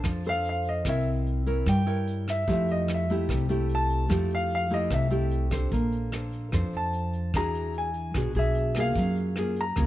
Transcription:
Already playing: D4 A4 C5 A5
0.04 F2 F3, kick, cross-stick, closed hi-hat
0.24 D4 A4 C5, closed hi-hat
0.29 F5
0.44 closed hi-hat
0.49 F5
0.65 closed hi-hat
0.69 D#5
0.85 C2 C4 E4 A#4 C#5, kick, cross-stick, closed hi-hat
0.89 E5
1.05 closed hi-hat
1.26 closed hi-hat
1.46 E4 A#4 C#5, closed hi-hat
1.66 G2 G3 G5, kick, cross-stick, closed hi-hat
1.86 E4 A#4 C#5, closed hi-hat
2.07 closed hi-hat
2.28 E5, cross-stick, closed hi-hat
2.47 F2 F3 A3 E4 G4, kick, closed hi-hat
2.52 E5
2.69 D#5, closed hi-hat
2.88 cross-stick, closed hi-hat
2.94 E5
3.10 A3 E4 G4, closed hi-hat
3.29 C2 C3, kick, cross-stick, closed hi-hat
3.49 A3 E4 G4, closed hi-hat
3.69 closed hi-hat
3.75 A5
3.90 closed hi-hat
4.09 F2 F3 A3 E4 G4, kick, cross-stick, closed hi-hat
4.30 closed hi-hat
4.35 F5
4.50 closed hi-hat
4.55 F5
4.70 A3 E4 G4 D#5, closed hi-hat
4.90 C2 C3 E5, kick, cross-stick, closed hi-hat
5.11 A3 E4 G4, closed hi-hat
5.31 closed hi-hat
5.51 D4 A4 C5, kick, cross-stick, closed hi-hat
5.72 A#1 A#3, kick, closed hi-hat
5.92 closed hi-hat
6.12 D4 A4 C5, cross-stick, closed hi-hat
6.32 closed hi-hat
6.52 F2 F3 D4 A4 C5, kick, cross-stick, closed hi-hat
6.73 F2 A5, closed hi-hat
6.93 closed hi-hat
7.13 closed hi-hat
7.34 E2 E3 D4 F#4 G#4 A#5, kick, cross-stick, closed hi-hat
7.54 closed hi-hat
7.74 G#5, closed hi-hat
7.94 closed hi-hat
8.14 B1 B2 D4 F#4 G#4, kick, cross-stick, closed hi-hat
8.34 B1 D4 F#4 G#4, closed hi-hat
8.39 E5
8.55 closed hi-hat
8.75 A#3 F4 G#4, cross-stick, closed hi-hat
8.80 F5
8.95 F#2 F#3, kick, closed hi-hat
9.16 closed hi-hat
9.36 A#3 F4 G#4, cross-stick, closed hi-hat
9.56 closed hi-hat
9.61 A#5
9.76 C#2 C#3 A#3 F4 G#4, kick, cross-stick, closed hi-hat

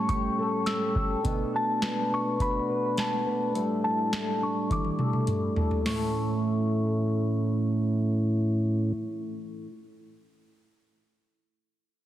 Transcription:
Already playing: A2 G3 A3 C#4 A4
0.09 G4 C#6, kick, closed hi-hat
0.38 A4
0.66 E6, snare, closed hi-hat
0.95 A4, kick
1.23 B2 A3 B3 D4, kick, closed hi-hat
1.54 F#4 A5
1.82 B4, snare, closed hi-hat
2.11 D4 C#6
2.40 F#4 B5, kick, closed hi-hat
2.69 B4
2.97 A5, snare, closed hi-hat
3.26 B4
3.55 A2 G3, closed hi-hat
3.84 E4 A5
4.13 snare, closed hi-hat
4.42 D4 C#6
4.70 E4 D6, kick, closed hi-hat, high tom
4.85 high tom
4.99 A4, mid tom
5.13 mid tom
5.27 E4, closed hi-hat, mid tom
5.56 A4, floor tom
5.71 floor tom
5.83 A2 E3 A3 C#4 E4 C#6, snare, open hi-hat
5.87 A3 C#4 E4
5.92 A4

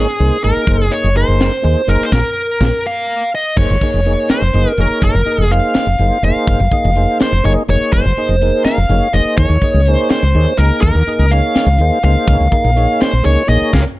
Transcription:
Already playing: G#4
0.19 C2 A#3 D#4 G#4 C5, closed hi-hat
0.43 G#1 A#3 D#4 G#4 A#4, closed hi-hat
0.56 muted fretless electric bass stroke
0.67 F#1 A#3 D#4 G#4 C5, kick, closed hi-hat
0.90 A#3 D#4 G#4 C#5 D#5, closed hi-hat
1.04 F#1
1.15 A#3 D#4 G#4 A#4 C5, closed hi-hat
1.28 F#1
1.40 snare, closed hi-hat
1.62 D#2 A#3 D#4 G#4 C5, closed hi-hat
1.87 F#1 A#3 D#4 G#4 A#4 C5, closed hi-hat
2.01 C5, muted fretless electric bass stroke
2.12 A#1 F4 G#4 A#4, kick, snare
2.60 A#1 F4 G#4 A#4, kick, snare
2.87 F5
3.35 D#5
3.56 F#1 A#3 D#4 G#4 C5 C#5, kick, crash
3.70 F#1
3.81 A#3 D#4 G#4 C#5, muted fretless electric bass stroke, kick, closed hi-hat
3.94 F1
4.05 A#3 D#4 G#4 C#5, closed hi-hat
4.29 C5, muted fretless electric bass stroke, snare, closed hi-hat
4.42 F1
4.53 F#1 A#3 D#4 G#4 D#5, closed hi-hat
4.77 F1 A#3 D#4 G#4 A#4 C#5, closed hi-hat
5.02 F#1 A#4, kick, closed hi-hat
5.14 F#1
5.25 A#3 D#4 G#4 D#5, closed hi-hat
5.38 F1
5.50 A#3 D#4 G#4 C5 F5, closed hi-hat
5.74 muted fretless electric bass stroke, snare, closed hi-hat
5.86 F1
5.98 F#1 A#3 D#4 G#4 C5, closed hi-hat
6.22 F1 A#3 D#4 G#4 C5 F5, closed hi-hat
6.47 F#1, kick, closed hi-hat
6.59 F#1
6.71 A#3 D#4 G#4 D#5, kick, closed hi-hat
6.84 F1
6.95 A#3 D#4 G#4 C5, closed hi-hat
7.20 C5, muted fretless electric bass stroke, snare, closed hi-hat
7.32 F1
7.43 F#1 A#3 D#4 G#4 C#5 D#5, closed hi-hat
7.68 F1 A#3 D#4 G#4 C#5, closed hi-hat
7.81 muted fretless electric bass stroke
7.93 F#1 C5, kick, closed hi-hat
8.05 F#1
8.17 A#3 D#4 G#4 D#5, closed hi-hat
8.28 F1
8.41 A#3 D#4 G#4 A#4, closed hi-hat
8.65 F5, muted fretless electric bass stroke, snare, closed hi-hat
8.78 F1
8.89 F#1 A#3 D#4 G#4 C#5, closed hi-hat
9.13 F1 A#3 D#4 G#4 C5 D#5, closed hi-hat
9.25 muted fretless electric bass stroke
9.37 D#2 A#3 D#4 G#4 C#5, kick, closed hi-hat
9.49 D#2
9.61 A#3 D#4 G#4 D#5, muted fretless electric bass stroke, kick, closed hi-hat
9.74 C#2
9.85 A#3 D#4 G#4 C#5, closed hi-hat
9.90 C5
10.10 C5, muted fretless electric bass stroke, snare, closed hi-hat
10.22 C#2
10.34 D#2 A#3 D#4 G#4 C#5, closed hi-hat
10.58 C#2 A#3 D#4 G#4 A#4, closed hi-hat
10.71 muted fretless electric bass stroke
10.81 D#2 A#4, kick, closed hi-hat
10.95 D#2
11.07 A#3 D#4 G#4 D#5, closed hi-hat
11.19 C#2
11.30 A#3 D#4 G#4 C#5 F5, closed hi-hat
11.55 muted fretless electric bass stroke, snare, closed hi-hat
11.66 C#2
11.78 D#2 A#3 D#4 G#4 C5, closed hi-hat
12.03 C#2 A#3 D#4 G#4 C5 F5, closed hi-hat
12.16 muted fretless electric bass stroke
12.27 C#2 A#3 D#4 G#4 C#5, kick, closed hi-hat
12.40 C#2
12.51 A#3 D#4 G#4 A#4, kick, closed hi-hat
12.64 A#1
12.75 A#3 D#4 G#4 C#5, closed hi-hat
13.01 C5, muted fretless electric bass stroke, snare, closed hi-hat
13.13 A#1
13.23 C#2 A#3 D#4 G#4 C#5, closed hi-hat
13.47 A#1 A#3 D#4 G#4 C#5 D#5, closed hi-hat
13.61 muted fretless electric bass stroke
13.72 C#2 C#4 F4 G#4 A#4 C#5 F5, kick, snare

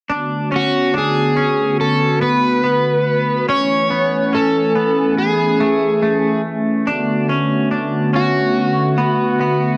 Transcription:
0.09 D3 A3 B3 D4 F#4
0.52 C#4
0.56 F#4
0.94 D4
0.98 G#4
1.36 C#4
1.81 A4
2.21 B3 B4
2.64 B3
3.47 E3 C#4 C#5 G#5
3.90 B3
4.33 C#4 A4
4.75 B3
5.18 G#4
5.60 A3
6.02 A3
6.87 D3 B3 D4 F#4
7.29 C#4
7.71 D4
8.13 C#4 F#4
8.98 B3
9.41 B3

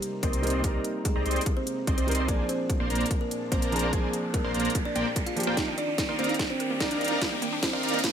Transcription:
Already playing: C3 G3 A#3 C4 D#4 G4 A#4, riser
0.02 closed hi-hat
0.23 C2 A#3 C4 A#4 C5 D5 D#5 C6, kick, closed hi-hat
0.33 closed hi-hat
0.42 G3 C4 D#4 A#4, closed hi-hat
0.47 closed hi-hat
0.50 closed hi-hat
0.62 C2 G3 C4 D#4 C5 D5 D#5 A#5, kick, closed hi-hat
0.66 A#4
0.84 closed hi-hat
1.05 G#3 G#4, kick, closed hi-hat
1.16 C2 C4 C5 D5 D#5 A#5
1.26 C2 C4 C5 D5 D#5 C6, closed hi-hat
1.31 closed hi-hat
1.36 closed hi-hat
1.41 closed hi-hat
1.46 kick, closed hi-hat
1.57 C4 C5
1.67 closed hi-hat
1.87 C2 C4 C5 D5 D#5 C6, kick, closed hi-hat
1.98 C4 C5, closed hi-hat
2.07 G3 C4 D#4 A#4, closed hi-hat
2.11 closed hi-hat
2.15 closed hi-hat
2.26 A#1 A#2 F3 G#3 A#3 D4 G#4 A#4 C5 D5 G#5, kick, closed hi-hat
2.49 C4 C5, closed hi-hat
2.70 kick, closed hi-hat
2.80 A#1 A#3 A#4 C5 D5 C6
2.90 A#1 A#3 A#4 C5 D5 A#5, closed hi-hat
2.95 closed hi-hat
3.01 closed hi-hat
3.06 closed hi-hat
3.11 kick, closed hi-hat
3.21 A#3 A#4
3.31 closed hi-hat
3.52 A#1 A#3 C4 A#4 C5 D5 A#5, kick, closed hi-hat
3.62 closed hi-hat
3.71 F3 A#3 D4 G#4, closed hi-hat
3.76 closed hi-hat
3.79 closed hi-hat
3.91 A#1 F3 A#3 D4 A#4 C5 D5 G#5, kick, closed hi-hat
3.95 G#4
4.13 closed hi-hat
4.34 A#3 A#4, kick, closed hi-hat
4.44 A#1 A#3 A#4 C5 D5 C6
4.54 A#1 A#3 A#4 C5 D5 A#5, closed hi-hat
4.60 closed hi-hat
4.65 closed hi-hat
4.70 closed hi-hat
4.75 kick, closed hi-hat
4.85 D4 D5
4.96 A#1 A#3 A#4 C5 D5 G5, closed hi-hat
5.16 kick, closed hi-hat
5.26 F4 F5, closed hi-hat
5.36 F3 A#3 D4 G4, closed hi-hat
5.40 closed hi-hat
5.43 D#1 A#3 A#4 C5 D5 G5, closed hi-hat
5.57 D#1 D#3 G3 A#3 D#4 G4 A#4 D5 D#5 F5 G5, kick, snare, closed hi-hat
5.68 D4
5.78 D4 D#4 D5, closed hi-hat
5.88 D4
5.98 A#4, kick, snare, closed hi-hat
6.09 D#1 A#3 D#4 A#4 D5 F5 C6
6.19 D#1 A#3 C4 D#4 A#4 C5 D5 F5 A#5, closed hi-hat
6.24 closed hi-hat
6.29 D4, closed hi-hat
6.34 closed hi-hat
6.39 D#4, kick, snare, closed hi-hat
6.50 C4 D4 C5
6.60 A#4, closed hi-hat
6.70 A#3
6.80 D#1 A#3 D4 D#4 A#4 D5 F5 A#5, kick, snare, closed hi-hat
6.91 D4, closed hi-hat
7.01 D#4, closed hi-hat
7.04 closed hi-hat
7.08 D4, closed hi-hat
7.22 D#1 D#4 A#4 D5 F5 G5, kick, snare, closed hi-hat
7.32 A#3
7.42 A#3, closed hi-hat
7.53 D4
7.63 C4 D#4 C5, kick, snare, closed hi-hat
7.73 D#1 D4 D#4 A#4 D5 F5 C6
7.83 D#1 D#4 A#4 D5 F5 A#5, closed hi-hat
7.88 closed hi-hat
7.94 A#3, closed hi-hat
7.99 closed hi-hat
8.04 A#3, kick, snare, closed hi-hat

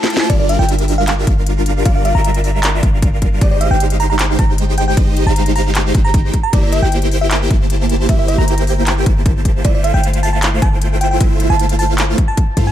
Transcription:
Already playing: A3 E4 F4 C5 G5 A5
0.04 snare
0.10 closed hi-hat
0.17 A5, snare
0.30 G1 G3 D4 F4 A#4 D5, kick, closed hi-hat
0.40 D5
0.49 F5, closed hi-hat
0.59 G1 G3 D4 F4 A#4 E5 G5
0.69 closed hi-hat
0.79 closed hi-hat
0.88 open hi-hat
0.98 F5
1.08 F5, clap, closed hi-hat
1.27 G1 G3 D4 F4 A#4 F5, kick, closed hi-hat
1.47 closed hi-hat
1.66 closed hi-hat
1.85 G1 G3 D4 F4 A#4 D5 F5, kick, closed hi-hat
1.95 F5
2.05 F5, closed hi-hat
2.15 G1 G3 D4 F4 A#4 E5 A#5
2.24 closed hi-hat
2.34 closed hi-hat
2.44 open hi-hat
2.63 clap, closed hi-hat
2.83 G1 G3 D4 F4 A#4 F5, kick, closed hi-hat
3.02 kick, closed hi-hat
3.22 kick, closed hi-hat
3.41 G1 G#3 D#4 G4 C5 D5 D#5, kick, closed hi-hat
3.51 D5
3.61 F5, closed hi-hat
3.71 G1 G#3 D#4 G4 C5 F5 G5
3.80 closed hi-hat
3.90 closed hi-hat
4.00 A#5, open hi-hat
4.10 A#5
4.19 clap, closed hi-hat
4.39 G1 G#3 D#4 G4 C5 G5 A#5, kick, closed hi-hat
4.58 closed hi-hat
4.78 G5, closed hi-hat
4.88 G5
4.97 G1 G#3 D#4 G4 C5 D#5, kick, closed hi-hat
5.17 closed hi-hat
5.27 G1 G#3 D#4 G4 C5 F5 A#5
5.36 closed hi-hat
5.46 closed hi-hat
5.56 A#5, open hi-hat
5.75 clap, closed hi-hat
5.95 G1 G#3 D#4 G4 C5 G5, kick, closed hi-hat
6.05 A#5
6.14 kick, closed hi-hat
6.34 kick, closed hi-hat
6.43 A#5
6.53 G1 A#3 E4 G4 C5 D5 E5, kick, closed hi-hat
6.63 D5
6.72 E5, closed hi-hat
6.82 G1 A#3 E4 G4 C5 G5
6.92 closed hi-hat
7.02 closed hi-hat
7.11 open hi-hat
7.21 E5
7.31 E5, clap, closed hi-hat
7.50 G1 A#3 E4 G4 C5 A5, kick, closed hi-hat
7.70 closed hi-hat
7.89 closed hi-hat
8.09 G1 A#3 E4 G4 C5 E5, kick, closed hi-hat
8.19 E5
8.28 E5, closed hi-hat
8.38 G1 A#3 E4 G4 C5 G5 A#5
8.48 closed hi-hat
8.58 closed hi-hat
8.67 open hi-hat
8.87 clap, closed hi-hat
9.06 G1 A#3 E4 G4 C5 A5, kick, closed hi-hat
9.26 kick, closed hi-hat
9.45 kick, closed hi-hat
9.65 G1 A3 E4 F4 C5 D5 E5, kick, closed hi-hat
9.75 D5
9.84 F5, closed hi-hat
9.94 G1 A3 E4 F4 C5 F5 G5
10.04 closed hi-hat
10.13 closed hi-hat
10.23 A5, open hi-hat
10.33 A5
10.43 clap, closed hi-hat
10.62 G1 A3 E4 F4 C5 G5 A5, kick, closed hi-hat
10.82 closed hi-hat
11.01 G5, closed hi-hat
11.11 G5
11.20 G1 A3 E4 F4 C5 E5, kick, closed hi-hat
11.40 closed hi-hat
11.50 G1 A3 E4 F4 C5 F5 A5
11.59 closed hi-hat
11.69 closed hi-hat
11.79 A5, open hi-hat
11.98 clap, closed hi-hat
12.18 kick, closed hi-hat
12.28 A5
12.37 kick, closed hi-hat
12.57 G2 A3 E4 F4 C5 F5, kick, closed hi-hat
12.67 A5

